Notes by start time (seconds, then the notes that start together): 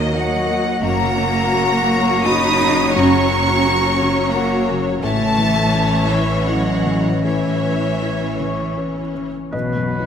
Already playing: D#2 D#3 F#3 A#3 D#4 F#4 A#4 D#5 F#5
0.12 F#3 A#3 F#4 D#5
0.16 F#5
0.31 F#4
0.46 A#3 D#4
0.65 A#3
0.80 F#1 F#2 F#3 A#3 C#4 F#4 C#5 F#5
0.85 A#5
1.00 C#3
1.16 C#3 F#4
1.34 C#5
1.51 A#3 F#4 C#5
1.69 F#5
1.88 A#3 C#6
2.07 C#5
2.26 A#3 D#4 F#4 C#5 B5 D#6
2.44 C#4
2.61 C#3
2.79 C#4
2.96 F#2 C#4 A#5 C#6
3.14 C#3
3.31 A#3 F#4
3.49 C#5
3.66 A#3 F#4 C#5
3.83 F#5
4.01 C#3 C#6
4.18 C#5
4.33 A#3 F#4 C#5 F#5 A#5
4.52 C#4
4.69 C#3 A#3
4.86 C#4
5.02 A1 A2 E3 A3 C#4 C#5 E5 A5
5.21 E3
5.38 E3 E4
5.57 C#5
5.74 C#4 E4 C#5
6.09 E3 C#4 C#5 E5 C#6
6.28 C#5
6.46 F#3 C#4 E4 D#5 F#5
6.66 C#4
6.85 E3
7.04 C#4
7.23 A2 E3 C#4 C#5 E5
7.43 E3
7.63 C#4 E4
7.82 C#5
8.01 C#4 E4 C#5
8.20 E5
8.39 E3 C#6
8.59 C#5
8.76 C#4 E4 C#5
8.97 C#4
9.14 E3 C#4
9.36 C#4
9.52 B1 B2 F#3 B3 B4 D#5
9.72 F#3
9.76 F#2
9.89 B3 D#4 F#4
10.00 D#4